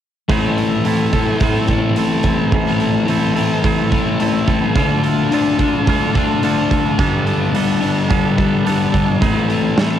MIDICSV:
0, 0, Header, 1, 4, 480
1, 0, Start_track
1, 0, Key_signature, 0, "minor"
1, 0, Tempo, 558140
1, 253, Time_signature, 4, 2, 24, 8
1, 8593, End_track
2, 0, Start_track
2, 0, Title_t, "Clean electric guitar"
2, 0, Program_c, 0, 27
2, 246, Note_on_c, 0, 45, 85
2, 253, Note_on_c, 0, 57, 92
2, 256, Note_on_c, 0, 60, 90
2, 264, Note_on_c, 0, 64, 81
2, 267, Note_on_c, 0, 69, 80
2, 491, Note_off_c, 0, 69, 0
2, 495, Note_on_c, 0, 69, 70
2, 503, Note_off_c, 0, 64, 0
2, 507, Note_on_c, 0, 64, 62
2, 512, Note_off_c, 0, 60, 0
2, 515, Note_on_c, 0, 60, 50
2, 728, Note_off_c, 0, 57, 0
2, 732, Note_on_c, 0, 57, 72
2, 736, Note_off_c, 0, 60, 0
2, 740, Note_on_c, 0, 60, 64
2, 742, Note_off_c, 0, 64, 0
2, 745, Note_on_c, 0, 64, 73
2, 750, Note_off_c, 0, 69, 0
2, 753, Note_on_c, 0, 69, 70
2, 967, Note_off_c, 0, 69, 0
2, 970, Note_on_c, 0, 69, 64
2, 983, Note_off_c, 0, 64, 0
2, 986, Note_on_c, 0, 64, 59
2, 991, Note_off_c, 0, 60, 0
2, 994, Note_on_c, 0, 60, 50
2, 1208, Note_off_c, 0, 45, 0
2, 1211, Note_on_c, 0, 45, 83
2, 1216, Note_off_c, 0, 60, 0
2, 1218, Note_off_c, 0, 57, 0
2, 1222, Note_on_c, 0, 57, 80
2, 1223, Note_off_c, 0, 64, 0
2, 1226, Note_on_c, 0, 60, 93
2, 1231, Note_off_c, 0, 69, 0
2, 1233, Note_on_c, 0, 64, 90
2, 1234, Note_on_c, 0, 69, 95
2, 1460, Note_off_c, 0, 69, 0
2, 1462, Note_off_c, 0, 64, 0
2, 1464, Note_on_c, 0, 69, 69
2, 1472, Note_on_c, 0, 64, 58
2, 1474, Note_off_c, 0, 60, 0
2, 1484, Note_on_c, 0, 60, 51
2, 1691, Note_off_c, 0, 57, 0
2, 1691, Note_off_c, 0, 60, 0
2, 1693, Note_off_c, 0, 45, 0
2, 1694, Note_on_c, 0, 57, 71
2, 1698, Note_off_c, 0, 64, 0
2, 1701, Note_on_c, 0, 60, 68
2, 1707, Note_off_c, 0, 69, 0
2, 1709, Note_on_c, 0, 64, 67
2, 1711, Note_on_c, 0, 69, 76
2, 1941, Note_off_c, 0, 69, 0
2, 1942, Note_off_c, 0, 64, 0
2, 1944, Note_on_c, 0, 69, 65
2, 1950, Note_off_c, 0, 60, 0
2, 1953, Note_on_c, 0, 64, 62
2, 1961, Note_on_c, 0, 60, 47
2, 2179, Note_off_c, 0, 60, 0
2, 2182, Note_on_c, 0, 45, 78
2, 2185, Note_off_c, 0, 57, 0
2, 2187, Note_off_c, 0, 64, 0
2, 2188, Note_on_c, 0, 57, 88
2, 2190, Note_on_c, 0, 60, 93
2, 2197, Note_on_c, 0, 64, 81
2, 2199, Note_off_c, 0, 69, 0
2, 2203, Note_on_c, 0, 69, 93
2, 2412, Note_off_c, 0, 69, 0
2, 2416, Note_off_c, 0, 64, 0
2, 2416, Note_on_c, 0, 69, 65
2, 2424, Note_off_c, 0, 60, 0
2, 2426, Note_on_c, 0, 64, 59
2, 2435, Note_on_c, 0, 60, 57
2, 2647, Note_off_c, 0, 57, 0
2, 2649, Note_off_c, 0, 60, 0
2, 2650, Note_on_c, 0, 57, 64
2, 2654, Note_off_c, 0, 64, 0
2, 2658, Note_off_c, 0, 45, 0
2, 2659, Note_on_c, 0, 60, 69
2, 2665, Note_on_c, 0, 64, 74
2, 2671, Note_off_c, 0, 69, 0
2, 2674, Note_on_c, 0, 69, 73
2, 2883, Note_off_c, 0, 69, 0
2, 2885, Note_off_c, 0, 64, 0
2, 2886, Note_on_c, 0, 69, 61
2, 2895, Note_on_c, 0, 64, 57
2, 2897, Note_off_c, 0, 60, 0
2, 2907, Note_on_c, 0, 60, 55
2, 3129, Note_off_c, 0, 60, 0
2, 3130, Note_off_c, 0, 57, 0
2, 3130, Note_on_c, 0, 45, 89
2, 3133, Note_on_c, 0, 57, 90
2, 3136, Note_off_c, 0, 64, 0
2, 3140, Note_on_c, 0, 60, 90
2, 3145, Note_off_c, 0, 69, 0
2, 3146, Note_on_c, 0, 64, 92
2, 3149, Note_on_c, 0, 69, 102
2, 3367, Note_off_c, 0, 69, 0
2, 3368, Note_off_c, 0, 64, 0
2, 3370, Note_on_c, 0, 69, 72
2, 3378, Note_on_c, 0, 64, 68
2, 3379, Note_off_c, 0, 60, 0
2, 3389, Note_on_c, 0, 60, 58
2, 3606, Note_off_c, 0, 57, 0
2, 3607, Note_off_c, 0, 60, 0
2, 3610, Note_on_c, 0, 57, 70
2, 3612, Note_off_c, 0, 45, 0
2, 3618, Note_off_c, 0, 64, 0
2, 3618, Note_on_c, 0, 60, 69
2, 3626, Note_off_c, 0, 69, 0
2, 3629, Note_on_c, 0, 64, 68
2, 3630, Note_on_c, 0, 69, 74
2, 3843, Note_off_c, 0, 69, 0
2, 3846, Note_on_c, 0, 69, 66
2, 3850, Note_off_c, 0, 64, 0
2, 3856, Note_off_c, 0, 60, 0
2, 3860, Note_on_c, 0, 64, 53
2, 3866, Note_on_c, 0, 60, 55
2, 4083, Note_off_c, 0, 57, 0
2, 4083, Note_off_c, 0, 64, 0
2, 4086, Note_off_c, 0, 60, 0
2, 4086, Note_on_c, 0, 50, 84
2, 4093, Note_on_c, 0, 62, 81
2, 4097, Note_off_c, 0, 69, 0
2, 4100, Note_on_c, 0, 69, 106
2, 4101, Note_on_c, 0, 65, 93
2, 4325, Note_off_c, 0, 69, 0
2, 4328, Note_on_c, 0, 69, 73
2, 4330, Note_off_c, 0, 65, 0
2, 4340, Note_on_c, 0, 65, 64
2, 4349, Note_off_c, 0, 62, 0
2, 4352, Note_on_c, 0, 62, 54
2, 4564, Note_off_c, 0, 50, 0
2, 4574, Note_on_c, 0, 50, 66
2, 4575, Note_off_c, 0, 65, 0
2, 4581, Note_off_c, 0, 62, 0
2, 4584, Note_on_c, 0, 62, 69
2, 4585, Note_on_c, 0, 65, 71
2, 4589, Note_off_c, 0, 69, 0
2, 4593, Note_on_c, 0, 69, 72
2, 4812, Note_off_c, 0, 69, 0
2, 4816, Note_on_c, 0, 69, 58
2, 4817, Note_off_c, 0, 65, 0
2, 4827, Note_on_c, 0, 65, 52
2, 4836, Note_off_c, 0, 62, 0
2, 4839, Note_on_c, 0, 62, 51
2, 5039, Note_off_c, 0, 50, 0
2, 5049, Note_on_c, 0, 50, 77
2, 5050, Note_off_c, 0, 62, 0
2, 5054, Note_off_c, 0, 65, 0
2, 5061, Note_on_c, 0, 62, 86
2, 5064, Note_on_c, 0, 65, 97
2, 5069, Note_off_c, 0, 69, 0
2, 5073, Note_on_c, 0, 69, 97
2, 5295, Note_off_c, 0, 65, 0
2, 5295, Note_off_c, 0, 69, 0
2, 5299, Note_on_c, 0, 69, 67
2, 5306, Note_off_c, 0, 62, 0
2, 5306, Note_on_c, 0, 65, 68
2, 5317, Note_on_c, 0, 62, 57
2, 5514, Note_off_c, 0, 50, 0
2, 5522, Note_off_c, 0, 62, 0
2, 5524, Note_on_c, 0, 50, 68
2, 5530, Note_off_c, 0, 65, 0
2, 5532, Note_on_c, 0, 62, 73
2, 5540, Note_on_c, 0, 65, 68
2, 5543, Note_off_c, 0, 69, 0
2, 5547, Note_on_c, 0, 69, 73
2, 5761, Note_off_c, 0, 69, 0
2, 5764, Note_off_c, 0, 65, 0
2, 5765, Note_on_c, 0, 69, 68
2, 5774, Note_on_c, 0, 65, 54
2, 5776, Note_off_c, 0, 62, 0
2, 5787, Note_on_c, 0, 62, 54
2, 5994, Note_off_c, 0, 50, 0
2, 5999, Note_off_c, 0, 65, 0
2, 6001, Note_off_c, 0, 62, 0
2, 6008, Note_on_c, 0, 55, 93
2, 6011, Note_on_c, 0, 62, 90
2, 6020, Note_on_c, 0, 59, 92
2, 6022, Note_off_c, 0, 69, 0
2, 6025, Note_on_c, 0, 69, 103
2, 6242, Note_off_c, 0, 69, 0
2, 6244, Note_off_c, 0, 59, 0
2, 6246, Note_on_c, 0, 69, 65
2, 6253, Note_off_c, 0, 62, 0
2, 6254, Note_on_c, 0, 59, 65
2, 6263, Note_on_c, 0, 62, 53
2, 6473, Note_off_c, 0, 55, 0
2, 6479, Note_off_c, 0, 62, 0
2, 6484, Note_on_c, 0, 55, 59
2, 6488, Note_off_c, 0, 59, 0
2, 6489, Note_on_c, 0, 62, 73
2, 6498, Note_off_c, 0, 69, 0
2, 6498, Note_on_c, 0, 59, 71
2, 6501, Note_on_c, 0, 69, 74
2, 6712, Note_off_c, 0, 69, 0
2, 6715, Note_off_c, 0, 59, 0
2, 6716, Note_on_c, 0, 69, 60
2, 6725, Note_off_c, 0, 62, 0
2, 6725, Note_on_c, 0, 59, 57
2, 6735, Note_on_c, 0, 62, 46
2, 6941, Note_off_c, 0, 55, 0
2, 6952, Note_off_c, 0, 59, 0
2, 6952, Note_off_c, 0, 62, 0
2, 6952, Note_on_c, 0, 55, 76
2, 6962, Note_on_c, 0, 62, 93
2, 6963, Note_on_c, 0, 59, 94
2, 6969, Note_off_c, 0, 69, 0
2, 6973, Note_on_c, 0, 69, 92
2, 7189, Note_off_c, 0, 69, 0
2, 7192, Note_off_c, 0, 59, 0
2, 7192, Note_on_c, 0, 69, 65
2, 7202, Note_on_c, 0, 59, 62
2, 7205, Note_off_c, 0, 62, 0
2, 7215, Note_on_c, 0, 62, 57
2, 7423, Note_off_c, 0, 55, 0
2, 7433, Note_off_c, 0, 62, 0
2, 7434, Note_on_c, 0, 55, 68
2, 7438, Note_off_c, 0, 59, 0
2, 7443, Note_on_c, 0, 62, 70
2, 7449, Note_on_c, 0, 59, 67
2, 7452, Note_off_c, 0, 69, 0
2, 7456, Note_on_c, 0, 69, 74
2, 7671, Note_off_c, 0, 69, 0
2, 7674, Note_on_c, 0, 69, 64
2, 7676, Note_off_c, 0, 59, 0
2, 7686, Note_on_c, 0, 59, 59
2, 7689, Note_off_c, 0, 62, 0
2, 7699, Note_on_c, 0, 62, 49
2, 7908, Note_off_c, 0, 55, 0
2, 7913, Note_on_c, 0, 45, 82
2, 7914, Note_off_c, 0, 59, 0
2, 7919, Note_on_c, 0, 57, 86
2, 7920, Note_off_c, 0, 62, 0
2, 7926, Note_on_c, 0, 60, 90
2, 7928, Note_on_c, 0, 64, 101
2, 7930, Note_off_c, 0, 69, 0
2, 7933, Note_on_c, 0, 69, 100
2, 8152, Note_off_c, 0, 69, 0
2, 8156, Note_on_c, 0, 69, 63
2, 8162, Note_off_c, 0, 64, 0
2, 8166, Note_on_c, 0, 64, 62
2, 8173, Note_off_c, 0, 60, 0
2, 8176, Note_on_c, 0, 60, 58
2, 8394, Note_off_c, 0, 57, 0
2, 8397, Note_on_c, 0, 57, 66
2, 8401, Note_off_c, 0, 60, 0
2, 8404, Note_on_c, 0, 60, 69
2, 8411, Note_off_c, 0, 64, 0
2, 8415, Note_on_c, 0, 64, 77
2, 8417, Note_off_c, 0, 69, 0
2, 8420, Note_on_c, 0, 69, 70
2, 8593, Note_off_c, 0, 45, 0
2, 8593, Note_off_c, 0, 57, 0
2, 8593, Note_off_c, 0, 60, 0
2, 8593, Note_off_c, 0, 64, 0
2, 8593, Note_off_c, 0, 69, 0
2, 8593, End_track
3, 0, Start_track
3, 0, Title_t, "Distorted electric guitar"
3, 0, Program_c, 1, 30
3, 244, Note_on_c, 1, 45, 87
3, 259, Note_on_c, 1, 52, 75
3, 267, Note_on_c, 1, 57, 87
3, 722, Note_off_c, 1, 45, 0
3, 725, Note_on_c, 1, 45, 59
3, 733, Note_off_c, 1, 52, 0
3, 737, Note_on_c, 1, 52, 72
3, 745, Note_off_c, 1, 57, 0
3, 749, Note_on_c, 1, 57, 74
3, 959, Note_off_c, 1, 57, 0
3, 962, Note_on_c, 1, 57, 63
3, 982, Note_off_c, 1, 52, 0
3, 985, Note_on_c, 1, 52, 49
3, 1438, Note_off_c, 1, 57, 0
3, 1442, Note_on_c, 1, 57, 74
3, 1459, Note_off_c, 1, 52, 0
3, 1470, Note_on_c, 1, 52, 52
3, 1673, Note_off_c, 1, 45, 0
3, 1676, Note_on_c, 1, 45, 72
3, 1679, Note_off_c, 1, 52, 0
3, 1689, Note_on_c, 1, 52, 65
3, 1695, Note_off_c, 1, 57, 0
3, 1699, Note_on_c, 1, 57, 68
3, 2145, Note_off_c, 1, 45, 0
3, 2155, Note_on_c, 1, 45, 85
3, 2159, Note_off_c, 1, 52, 0
3, 2169, Note_on_c, 1, 52, 83
3, 2177, Note_off_c, 1, 57, 0
3, 2180, Note_on_c, 1, 57, 93
3, 2622, Note_off_c, 1, 45, 0
3, 2633, Note_on_c, 1, 45, 68
3, 2639, Note_off_c, 1, 52, 0
3, 2649, Note_on_c, 1, 52, 77
3, 2656, Note_off_c, 1, 57, 0
3, 2659, Note_on_c, 1, 57, 77
3, 2877, Note_off_c, 1, 57, 0
3, 2881, Note_on_c, 1, 57, 62
3, 2895, Note_off_c, 1, 52, 0
3, 2906, Note_on_c, 1, 52, 55
3, 3124, Note_off_c, 1, 45, 0
3, 3356, Note_off_c, 1, 57, 0
3, 3359, Note_on_c, 1, 57, 71
3, 3377, Note_off_c, 1, 52, 0
3, 3387, Note_on_c, 1, 52, 60
3, 3611, Note_off_c, 1, 52, 0
3, 3611, Note_on_c, 1, 45, 67
3, 3621, Note_on_c, 1, 52, 70
3, 3631, Note_off_c, 1, 57, 0
3, 3635, Note_on_c, 1, 57, 70
3, 4078, Note_off_c, 1, 45, 0
3, 4083, Note_off_c, 1, 52, 0
3, 4086, Note_on_c, 1, 50, 86
3, 4101, Note_off_c, 1, 57, 0
3, 4101, Note_on_c, 1, 57, 85
3, 4111, Note_on_c, 1, 62, 95
3, 4557, Note_off_c, 1, 50, 0
3, 4567, Note_on_c, 1, 50, 71
3, 4580, Note_off_c, 1, 57, 0
3, 4583, Note_on_c, 1, 57, 70
3, 4587, Note_off_c, 1, 62, 0
3, 4591, Note_on_c, 1, 62, 74
3, 4796, Note_off_c, 1, 62, 0
3, 4799, Note_on_c, 1, 62, 67
3, 4822, Note_off_c, 1, 57, 0
3, 4826, Note_on_c, 1, 57, 52
3, 5050, Note_off_c, 1, 50, 0
3, 5264, Note_off_c, 1, 62, 0
3, 5275, Note_on_c, 1, 62, 71
3, 5296, Note_off_c, 1, 57, 0
3, 5299, Note_on_c, 1, 57, 53
3, 5521, Note_on_c, 1, 50, 60
3, 5529, Note_off_c, 1, 57, 0
3, 5532, Note_on_c, 1, 57, 67
3, 5533, Note_off_c, 1, 62, 0
3, 5543, Note_on_c, 1, 62, 81
3, 5992, Note_off_c, 1, 50, 0
3, 6003, Note_off_c, 1, 62, 0
3, 6007, Note_on_c, 1, 43, 81
3, 6017, Note_on_c, 1, 50, 94
3, 6027, Note_off_c, 1, 57, 0
3, 6030, Note_on_c, 1, 55, 98
3, 6470, Note_off_c, 1, 43, 0
3, 6480, Note_on_c, 1, 43, 67
3, 6481, Note_off_c, 1, 50, 0
3, 6491, Note_off_c, 1, 55, 0
3, 6492, Note_on_c, 1, 50, 67
3, 6501, Note_on_c, 1, 55, 72
3, 6708, Note_off_c, 1, 55, 0
3, 6719, Note_on_c, 1, 55, 65
3, 6732, Note_off_c, 1, 50, 0
3, 6742, Note_on_c, 1, 50, 51
3, 6966, Note_off_c, 1, 43, 0
3, 7194, Note_off_c, 1, 55, 0
3, 7204, Note_on_c, 1, 55, 71
3, 7224, Note_off_c, 1, 50, 0
3, 7235, Note_on_c, 1, 50, 52
3, 7456, Note_on_c, 1, 43, 61
3, 7457, Note_off_c, 1, 50, 0
3, 7468, Note_off_c, 1, 55, 0
3, 7468, Note_on_c, 1, 50, 66
3, 7478, Note_on_c, 1, 55, 66
3, 7919, Note_off_c, 1, 43, 0
3, 7924, Note_off_c, 1, 50, 0
3, 7927, Note_on_c, 1, 45, 75
3, 7930, Note_off_c, 1, 55, 0
3, 7941, Note_on_c, 1, 52, 81
3, 7951, Note_on_c, 1, 57, 98
3, 8416, Note_off_c, 1, 45, 0
3, 8419, Note_on_c, 1, 45, 64
3, 8427, Note_off_c, 1, 52, 0
3, 8430, Note_on_c, 1, 52, 75
3, 8438, Note_off_c, 1, 57, 0
3, 8442, Note_on_c, 1, 57, 72
3, 8593, Note_off_c, 1, 45, 0
3, 8593, Note_off_c, 1, 52, 0
3, 8593, Note_off_c, 1, 57, 0
3, 8593, End_track
4, 0, Start_track
4, 0, Title_t, "Drums"
4, 254, Note_on_c, 9, 36, 102
4, 254, Note_on_c, 9, 46, 65
4, 340, Note_off_c, 9, 36, 0
4, 340, Note_off_c, 9, 46, 0
4, 496, Note_on_c, 9, 46, 45
4, 582, Note_off_c, 9, 46, 0
4, 730, Note_on_c, 9, 46, 64
4, 816, Note_off_c, 9, 46, 0
4, 970, Note_on_c, 9, 46, 44
4, 971, Note_on_c, 9, 36, 76
4, 1056, Note_off_c, 9, 46, 0
4, 1057, Note_off_c, 9, 36, 0
4, 1205, Note_on_c, 9, 46, 58
4, 1211, Note_on_c, 9, 36, 94
4, 1291, Note_off_c, 9, 46, 0
4, 1297, Note_off_c, 9, 36, 0
4, 1440, Note_on_c, 9, 46, 49
4, 1448, Note_on_c, 9, 36, 67
4, 1526, Note_off_c, 9, 46, 0
4, 1534, Note_off_c, 9, 36, 0
4, 1686, Note_on_c, 9, 46, 64
4, 1772, Note_off_c, 9, 46, 0
4, 1918, Note_on_c, 9, 46, 49
4, 1927, Note_on_c, 9, 36, 77
4, 2004, Note_off_c, 9, 46, 0
4, 2013, Note_off_c, 9, 36, 0
4, 2168, Note_on_c, 9, 46, 67
4, 2169, Note_on_c, 9, 36, 110
4, 2254, Note_off_c, 9, 46, 0
4, 2255, Note_off_c, 9, 36, 0
4, 2407, Note_on_c, 9, 46, 44
4, 2493, Note_off_c, 9, 46, 0
4, 2648, Note_on_c, 9, 46, 63
4, 2734, Note_off_c, 9, 46, 0
4, 2893, Note_on_c, 9, 46, 46
4, 2979, Note_off_c, 9, 46, 0
4, 3130, Note_on_c, 9, 36, 96
4, 3136, Note_on_c, 9, 46, 58
4, 3216, Note_off_c, 9, 36, 0
4, 3222, Note_off_c, 9, 46, 0
4, 3370, Note_on_c, 9, 36, 71
4, 3371, Note_on_c, 9, 46, 41
4, 3456, Note_off_c, 9, 36, 0
4, 3457, Note_off_c, 9, 46, 0
4, 3611, Note_on_c, 9, 46, 59
4, 3697, Note_off_c, 9, 46, 0
4, 3850, Note_on_c, 9, 36, 78
4, 3851, Note_on_c, 9, 46, 45
4, 3936, Note_off_c, 9, 36, 0
4, 3937, Note_off_c, 9, 46, 0
4, 4089, Note_on_c, 9, 46, 62
4, 4090, Note_on_c, 9, 36, 105
4, 4175, Note_off_c, 9, 46, 0
4, 4176, Note_off_c, 9, 36, 0
4, 4331, Note_on_c, 9, 46, 50
4, 4417, Note_off_c, 9, 46, 0
4, 4574, Note_on_c, 9, 46, 64
4, 4660, Note_off_c, 9, 46, 0
4, 4805, Note_on_c, 9, 46, 49
4, 4810, Note_on_c, 9, 36, 70
4, 4891, Note_off_c, 9, 46, 0
4, 4896, Note_off_c, 9, 36, 0
4, 5050, Note_on_c, 9, 46, 63
4, 5051, Note_on_c, 9, 36, 91
4, 5136, Note_off_c, 9, 46, 0
4, 5137, Note_off_c, 9, 36, 0
4, 5292, Note_on_c, 9, 36, 74
4, 5292, Note_on_c, 9, 46, 50
4, 5378, Note_off_c, 9, 36, 0
4, 5378, Note_off_c, 9, 46, 0
4, 5530, Note_on_c, 9, 46, 65
4, 5616, Note_off_c, 9, 46, 0
4, 5773, Note_on_c, 9, 36, 80
4, 5777, Note_on_c, 9, 46, 46
4, 5859, Note_off_c, 9, 36, 0
4, 5863, Note_off_c, 9, 46, 0
4, 6011, Note_on_c, 9, 46, 70
4, 6012, Note_on_c, 9, 36, 103
4, 6097, Note_off_c, 9, 46, 0
4, 6098, Note_off_c, 9, 36, 0
4, 6252, Note_on_c, 9, 46, 48
4, 6338, Note_off_c, 9, 46, 0
4, 6490, Note_on_c, 9, 46, 61
4, 6576, Note_off_c, 9, 46, 0
4, 6728, Note_on_c, 9, 46, 46
4, 6814, Note_off_c, 9, 46, 0
4, 6968, Note_on_c, 9, 46, 57
4, 6971, Note_on_c, 9, 36, 102
4, 7054, Note_off_c, 9, 46, 0
4, 7057, Note_off_c, 9, 36, 0
4, 7207, Note_on_c, 9, 46, 39
4, 7210, Note_on_c, 9, 36, 73
4, 7293, Note_off_c, 9, 46, 0
4, 7296, Note_off_c, 9, 36, 0
4, 7453, Note_on_c, 9, 46, 64
4, 7539, Note_off_c, 9, 46, 0
4, 7688, Note_on_c, 9, 46, 41
4, 7689, Note_on_c, 9, 36, 74
4, 7774, Note_off_c, 9, 46, 0
4, 7775, Note_off_c, 9, 36, 0
4, 7927, Note_on_c, 9, 46, 61
4, 7929, Note_on_c, 9, 36, 108
4, 8013, Note_off_c, 9, 46, 0
4, 8015, Note_off_c, 9, 36, 0
4, 8168, Note_on_c, 9, 46, 45
4, 8254, Note_off_c, 9, 46, 0
4, 8408, Note_on_c, 9, 38, 92
4, 8408, Note_on_c, 9, 46, 60
4, 8494, Note_off_c, 9, 38, 0
4, 8494, Note_off_c, 9, 46, 0
4, 8593, End_track
0, 0, End_of_file